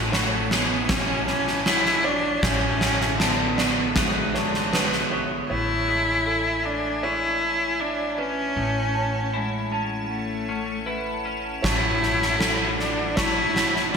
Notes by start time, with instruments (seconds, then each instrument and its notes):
Already playing: upright bass A1, clean electric guitar A2 E3 G#3, felt piano A4, ambient pad C#5 G#5 A5
0.12 clean electric guitar E3, cello A3, felt piano C#5, snare
0.51 clean electric guitar G#3, cello B3, snare
0.89 cello C#4, kick, snare
1.27 clean electric guitar E3, cello C#4, snare
1.47 snare
1.66 clean electric guitar G#3, cello E4, snare
1.85 snare
2.04 cello D4, felt piano C#5
2.42 upright bass A1, clean electric guitar A2, ambient pad D3 G#4 E5, cello C#4, kick, snare
2.81 clean electric guitar G#3, snare
3.01 snare
3.18 clean electric guitar D3, cello B3, snare
3.57 clean electric guitar G#3, felt piano D5, snare
3.96 cello G#3, clean electric guitar B3, kick, snare
4.34 clean electric guitar D3, felt piano C#5, snare
4.54 snare
4.72 clean electric guitar G#3, felt piano B4, snare
4.92 snare
5.11 clean electric guitar B3, felt piano C#5
5.49 upright bass A1, clean electric guitar A2, cello E4, ambient pad C#5 G#5 A5, felt piano C#5
5.88 clean electric guitar G#3
6.26 clean electric guitar E4, felt piano A4
6.65 cello D4
7.03 clean electric guitar G#3, cello E4, felt piano C#5
7.79 cello D4, clean electric guitar E4
8.18 clean electric guitar C#4, cello C#4, felt piano B4
8.56 upright bass A1, clean electric guitar A2, ambient pad F#5
8.94 felt piano A5
9.34 cello G#3, clean electric guitar E4
9.71 clean electric guitar C#4, felt piano A5
10.12 cello A3
10.49 clean electric guitar C#4
10.86 clean electric guitar E4, felt piano B4
11.25 clean electric guitar C#4
11.62 upright bass A1, clean electric guitar A2, cello E4, ambient pad E4, felt piano C#5, kick, snare
12.02 clean electric guitar A3, snare
12.22 snare
12.39 clean electric guitar E4, felt piano A4, snare
12.78 cello D4, snare
13.16 clean electric guitar A3, cello E4, felt piano C#5, kick, snare
13.56 snare
13.76 snare
13.92 cello D4, clean electric guitar E4